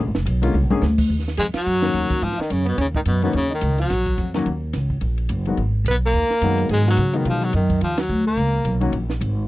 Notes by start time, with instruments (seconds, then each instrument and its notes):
0.07 upright bass G#1
0.15 upright bass F1, snare
0.26 upright bass B1, hi-hat pedal, ride
0.42 grand piano D3 G#3 A#3 C#4 F4, ride
0.54 upright bass C#2, mid tom
0.63 upright bass A#1
0.70 upright bass G#1, grand piano D3 G#3 A#3 C#4 G#4, mid tom
0.82 upright bass D2, snare, hi-hat pedal
0.98 kick, crash
1.10 upright bass D#2
1.19 snare
1.28 snare
1.37 upright bass F2, baritone saxophone G#3, alto saxophone G#4, hi-hat pedal, ride
1.54 baritone saxophone F#3, alto saxophone F#4, muted upright bass stroke, snare, ride
1.66 upright bass F#2
1.81 grand piano D#3 F#3 A#3 C#4 F#4, snare
1.94 upright bass D#2, hi-hat pedal, ride
2.10 muted upright bass stroke, kick, ride
2.22 upright bass G#2, baritone saxophone F3, alto saxophone F4, ride
2.31 snare
2.38 baritone saxophone D#3, alto saxophone D#4, muted upright bass stroke, snare
2.50 upright bass F#2, baritone saxophone C#3, alto saxophone C#4, hi-hat pedal, ride
2.65 baritone saxophone B2, alto saxophone B3, ride
2.77 upright bass D#2, baritone saxophone C#3, alto saxophone C#4, ride
2.95 baritone saxophone D#3, alto saxophone D#4, kick
3.06 upright bass F#2, baritone saxophone B2, alto saxophone B3, hi-hat pedal, ride
3.22 baritone saxophone B2, grand piano D#3 F#3 A#3 C#4 F#4, alto saxophone B3, ride
3.33 upright bass D#2, baritone saxophone C#3, alto saxophone C#4, ride
3.50 alto saxophone D#4
3.54 baritone saxophone D#3
3.61 upright bass C#2, hi-hat pedal, ride
3.78 baritone saxophone F#3, alto saxophone F#4, ride
3.90 upright bass A#1, snare, ride
4.06 kick, ride
4.18 upright bass F2, hi-hat pedal, ride
4.34 grand piano D#3 F#3 A#3 C#4 F#4, snare, ride
4.46 upright bass D#2, ride
4.73 upright bass C#2, snare, hi-hat pedal, ride
4.90 kick
5.01 upright bass A#1, ride
5.18 ride
5.29 upright bass F#1, hi-hat pedal, ride
5.45 grand piano D#3 F#3 G#3 B3 F#4, ride
5.57 upright bass G#1, ride
5.84 upright bass B1, alto saxophone B4, hi-hat pedal, ride
5.90 baritone saxophone B3
6.06 baritone saxophone A#3, alto saxophone A#4
6.13 upright bass D#2, ride
6.30 snare
6.41 upright bass F#2, grand piano D#3 F#3 G#3 B3 F#4, hi-hat pedal, ride
6.58 ride
6.69 upright bass G#2, baritone saxophone G#3, alto saxophone G#4, ride
6.86 grand piano D#3 F#3 G#3 B3 F#4, baritone saxophone F#3, alto saxophone F#4
6.97 upright bass C#3, hi-hat pedal, ride
7.13 grand piano D#3 F#3 G#3 B3 F#4, alto saxophone D#4, ride
7.17 baritone saxophone D#3
7.25 upright bass B2, alto saxophone F4, ride
7.30 baritone saxophone F3
7.42 baritone saxophone F#3, alto saxophone F#4, ride
7.53 upright bass F#2, baritone saxophone D#3, alto saxophone D#4, hi-hat pedal, ride
7.70 kick, ride
7.81 upright bass D#2, baritone saxophone F3, alto saxophone F4, ride
7.97 baritone saxophone F#3, alto saxophone F#4, snare, ride
8.09 upright bass D2, hi-hat pedal
8.26 baritone saxophone A#3, alto saxophone A#4
8.37 upright bass C#2, ride
8.64 upright bass B1, hi-hat pedal, ride
8.80 grand piano D#3 F#3 A#3 C#4 F#4, ride
8.92 upright bass A#1, ride
9.10 snare
9.21 upright bass G#1, hi-hat pedal, ride